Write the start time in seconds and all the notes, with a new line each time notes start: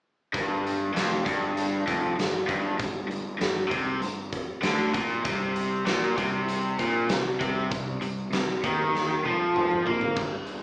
0.33 G1 G2, kick, closed hi-hat
0.67 closed hi-hat
0.93 F1 F2, snare, closed hi-hat
1.25 G1 G2, kick, closed hi-hat
1.57 closed hi-hat
1.87 F1 F2, kick, closed hi-hat
2.16 G1 G2, snare, closed hi-hat
2.47 G1 G2, kick, closed hi-hat
2.78 G1 G2, kick, closed hi-hat
3.07 G1 G2, closed hi-hat
3.38 G1 G2, snare, closed hi-hat
3.68 C2 C3, kick, closed hi-hat
4.00 G1 G2, closed hi-hat
4.32 kick, closed hi-hat
4.62 D2 D3, snare, closed hi-hat
4.94 A#1 A#2, kick, closed hi-hat
5.25 C2 C3, kick, closed hi-hat
5.56 closed hi-hat
5.86 A#1 A#2, snare, closed hi-hat
6.17 C2 C3, kick, closed hi-hat
6.48 closed hi-hat
6.79 A#1 A#2, kick, closed hi-hat
7.09 C2 C3, snare, closed hi-hat
7.40 C2 C3, kick, closed hi-hat
7.71 C2 C3, kick, closed hi-hat
8.01 C2 C3, closed hi-hat
8.30 C2, snare, closed hi-hat
8.35 C3
8.64 D#2 D#3, kick, closed hi-hat
8.95 snare
9.24 F2 F3, high tom
9.56 mid tom
9.71 mid tom
9.86 A#2 A#3, floor tom
10.01 floor tom
10.16 G1 G2 D3, kick, crash
10.46 G1, closed hi-hat